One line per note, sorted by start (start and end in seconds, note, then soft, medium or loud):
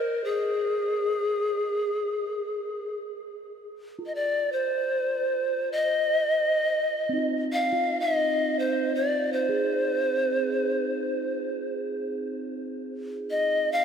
0.00 0.26 A#4 medium
0.00 3.29 A#4 medium
0.24 2.99 G#4 medium
3.99 7.17 F4 soft
4.06 4.17 D#5 soft
4.15 4.54 D5 medium
4.52 5.70 C5 medium
5.72 7.26 D#5 medium
7.09 13.85 C4 medium
7.09 13.85 D#4 soft
7.18 7.71 F4 soft
7.53 8.02 F5 medium
7.73 13.85 F4 medium
8.00 8.61 D#5 medium
8.59 8.96 C5 medium
8.95 9.34 D5 medium
9.33 11.75 C5 medium
9.49 13.85 G#4 medium
13.31 13.74 D#5 medium
13.72 13.85 F5 loud